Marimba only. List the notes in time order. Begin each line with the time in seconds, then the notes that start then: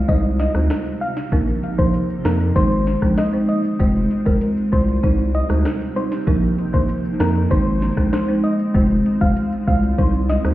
0.08 G3 C4 D#4 C5
0.55 G3 C4 D#4 C5
1.32 F3 A#3 D#4 A#4
1.78 F3 A#3 D#4 A#4
2.25 F3 A#3 D#4 A#4
2.56 G#3 C4 D#4 C5
3.02 G#3 C4 D#4 C5
3.33 G#3 C4 D#4 C5
3.79 G#3 C4 F4 C5
4.26 G#3 C4 F4 C5
4.72 G#3 C4 F4 C5
5.03 G3 C4 D#4 C5
5.49 G3 C4 D#4 C5
5.96 G3 C4 D#4 C5
6.27 F3 A#3 D#4 A#4
6.73 F3 A#3 D#4 A#4
7.20 F3 A#3 D#4 A#4
7.50 G#3 C4 D#4 C5
7.97 G#3 C4 D#4 C5
8.28 G#3 C4 D#4 C5
8.74 G#3 C4 F4 C5
9.21 G#3 C4 F4 C5
9.67 G#3 C4 F4 C5
9.98 G3 C4 D#4 C5
10.44 G3 C4 D#4 C5